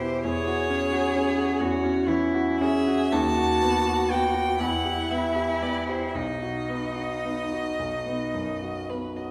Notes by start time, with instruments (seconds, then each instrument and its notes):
Already playing: grand piano E2 B2 B3, cello G4, violin C5
0.00 grand piano E4
0.23 grand piano E2, cello G#4, violin C#5
0.47 grand piano F#4
0.70 grand piano C#4
0.92 grand piano F#4
1.15 grand piano C#4
1.38 grand piano F#4
1.60 grand piano E2, cello F#4
1.84 grand piano C#4
2.07 grand piano E3, cello E4
2.34 grand piano F#4
2.59 grand piano C#4, cello G#4, violin E5
2.87 grand piano F#4
3.12 grand piano D#2, cello F#4, violin A5
3.38 grand piano F#4
3.62 grand piano B3
3.86 grand piano F#4
4.10 grand piano B3, violin G5
4.34 grand piano F#4
4.59 grand piano E2, cello E4, violin F#5
4.85 grand piano G4
5.11 grand piano B3, violin E5
5.36 grand piano G4
5.62 grand piano B3, violin D5
5.88 grand piano G4, violin C5
6.08 violin E5
6.15 grand piano B1, cello D#4, violin D#5
6.42 grand piano F#4
6.69 grand piano B3
6.96 grand piano F#4
7.24 grand piano B3
7.52 grand piano F#4
7.79 grand piano B1
8.06 grand piano B3
8.34 grand piano F#2
8.62 grand piano F#4
8.89 grand piano B3, violin B4
9.16 grand piano F#4, violin D#5